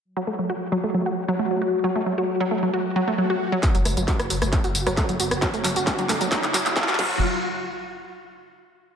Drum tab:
CC |--------------------------------|--------------------------------|--------------------------------|----------------------------x---|
HH |--------------------------------|--------------------------------|x-x-o-x-x-x-o-x-x-x-o-x-x-x-o-x-|x-x-o-x-x-x-o-x-x-x-o-x-x-x-----|
TB |--------------------------------|--------------------------------|x-x-x-x-x-x-x-x-x-x-x-x-x-x-x-x-|x-x-x-x-x-x-x-x-x-x-x-x-x-x-----|
CP |--------------------------------|--------------------------------|x-------x-------x-------x-------|x---x---x---x---x-x-x-x-xxxx----|
SD |--------------------------------|--------------------------------|----r-----r---r-------r-------r-|--------------------------------|
BD |--------------------------------|--------------------------------|o-------o-------o-------o-------|o-------o---o---o-------o---o---|

CC |--------------------------------|
HH |--------------------------------|
TB |--------------------------------|
CP |--------------------------------|
SD |--------------------------------|
BD |--------------------------------|